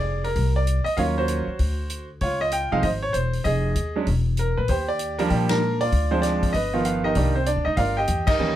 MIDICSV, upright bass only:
0, 0, Header, 1, 3, 480
1, 0, Start_track
1, 0, Tempo, 308642
1, 1529, Time_signature, 4, 2, 24, 8
1, 13309, End_track
2, 0, Start_track
2, 0, Title_t, "Upright bass"
2, 0, Program_c, 0, 32
2, 0, Note_on_c, 0, 29, 79
2, 516, Note_off_c, 0, 29, 0
2, 558, Note_on_c, 0, 36, 80
2, 1291, Note_off_c, 0, 36, 0
2, 1517, Note_on_c, 0, 39, 73
2, 2251, Note_off_c, 0, 39, 0
2, 2478, Note_on_c, 0, 38, 75
2, 3395, Note_off_c, 0, 38, 0
2, 3444, Note_on_c, 0, 37, 71
2, 4174, Note_off_c, 0, 37, 0
2, 4229, Note_on_c, 0, 36, 65
2, 4391, Note_off_c, 0, 36, 0
2, 4401, Note_on_c, 0, 32, 80
2, 4851, Note_off_c, 0, 32, 0
2, 4884, Note_on_c, 0, 28, 68
2, 5332, Note_off_c, 0, 28, 0
2, 5365, Note_on_c, 0, 29, 78
2, 5813, Note_off_c, 0, 29, 0
2, 5837, Note_on_c, 0, 39, 70
2, 6289, Note_off_c, 0, 39, 0
2, 6326, Note_on_c, 0, 28, 83
2, 7056, Note_off_c, 0, 28, 0
2, 7121, Note_on_c, 0, 46, 72
2, 7281, Note_off_c, 0, 46, 0
2, 7293, Note_on_c, 0, 39, 77
2, 8203, Note_off_c, 0, 39, 0
2, 8253, Note_on_c, 0, 46, 78
2, 9164, Note_off_c, 0, 46, 0
2, 9214, Note_on_c, 0, 38, 78
2, 10124, Note_off_c, 0, 38, 0
2, 10169, Note_on_c, 0, 31, 73
2, 11081, Note_off_c, 0, 31, 0
2, 11132, Note_on_c, 0, 36, 77
2, 11726, Note_off_c, 0, 36, 0
2, 11763, Note_on_c, 0, 38, 64
2, 11914, Note_off_c, 0, 38, 0
2, 11921, Note_on_c, 0, 37, 61
2, 12073, Note_off_c, 0, 37, 0
2, 12090, Note_on_c, 0, 31, 82
2, 12535, Note_off_c, 0, 31, 0
2, 12568, Note_on_c, 0, 40, 73
2, 13014, Note_off_c, 0, 40, 0
2, 13044, Note_on_c, 0, 39, 74
2, 13309, Note_off_c, 0, 39, 0
2, 13309, End_track
3, 0, Start_track
3, 0, Title_t, "Muted upright bass strokes"
3, 1327, Note_on_c, 9, 29, 38
3, 1483, Note_off_c, 9, 29, 0
3, 2290, Note_on_c, 9, 29, 36
3, 2446, Note_off_c, 9, 29, 0
3, 13309, End_track
0, 0, End_of_file